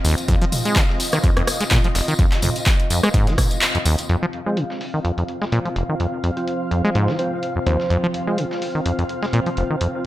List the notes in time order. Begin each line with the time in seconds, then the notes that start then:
Already playing: C4 F4 D#5
0.05 D#2, closed hi-hat, open hi-hat, tambourine
0.18 closed hi-hat, tambourine
0.28 F2, kick, closed hi-hat, tambourine
0.42 F3, closed hi-hat
0.52 closed hi-hat, mid tom, open hi-hat, tambourine
0.65 G#3, closed hi-hat, tambourine
0.76 C3, kick, snare, clap, closed hi-hat, tambourine
0.89 snare
1.00 open hi-hat, tambourine
1.12 D#3, cross-stick, closed hi-hat, tambourine
1.24 F2, kick, closed hi-hat
1.37 F2, cross-stick, closed hi-hat
1.47 cross-stick, closed hi-hat, open hi-hat, tambourine
1.60 G#3, snare, closed hi-hat, tambourine
1.71 A#2, kick, snare, clap, closed hi-hat, mid tom
1.84 F3, closed hi-hat
1.95 F1, snare, closed hi-hat, open hi-hat, tambourine
2.08 D#3, closed hi-hat, tambourine
2.19 F2, kick, closed hi-hat
2.32 snare, clap, closed hi-hat
2.42 F2, mid tom, open hi-hat, tambourine
2.56 closed hi-hat, tambourine
2.66 kick, snare, clap, closed hi-hat, tambourine
2.80 closed hi-hat
2.90 F2, closed hi-hat, open hi-hat, tambourine
3.03 G#3, cross-stick, closed hi-hat, tambourine
3.13 G#2, kick, closed hi-hat, tambourine
3.27 F3, snare, closed hi-hat
3.38 kick, cross-stick, closed hi-hat, mid tom, open hi-hat, tambourine
3.51 closed hi-hat, tambourine
3.61 clap, closed hi-hat, tambourine
3.75 F2, closed hi-hat
3.86 D#2, closed hi-hat, open hi-hat, tambourine
3.98 closed hi-hat, tambourine
4.09 F2 C4 F4 F5, closed hi-hat
4.22 F3
4.33 closed hi-hat
4.46 F3 G#3 C4 C5
4.57 C3, closed hi-hat
4.70 snare
4.81 open hi-hat
4.94 D#3
5.05 F2, closed hi-hat
5.18 F2, closed hi-hat
5.28 closed hi-hat
5.42 G#3, snare
5.52 A#2 F3 C4 C5, closed hi-hat
5.65 F3, closed hi-hat
5.76 F1, closed hi-hat
5.89 D#3
6.00 F2, closed hi-hat
6.24 F2, closed hi-hat
6.37 F3 C4 C5, closed hi-hat
6.48 closed hi-hat
6.71 F2, closed hi-hat
6.84 G#3
6.95 G#2 F3 C4 C5, closed hi-hat
7.08 F3, snare
7.19 F3 C4 C5, closed hi-hat
7.43 closed hi-hat
7.56 F2
7.67 D#2 F3 C4 C5, closed hi-hat
7.80 snare
7.90 F2, closed hi-hat
8.03 F3
8.14 closed hi-hat
8.27 F3 G#3 C4 C5
8.38 C3, closed hi-hat
8.51 snare
8.62 open hi-hat
8.75 D#3
8.86 F2, closed hi-hat
8.99 F2, closed hi-hat
9.09 closed hi-hat
9.23 G#3, snare
9.33 A#2 F3 C4 C5, closed hi-hat
9.46 F3, closed hi-hat
9.57 F1, closed hi-hat
9.70 D#3
9.81 F2, closed hi-hat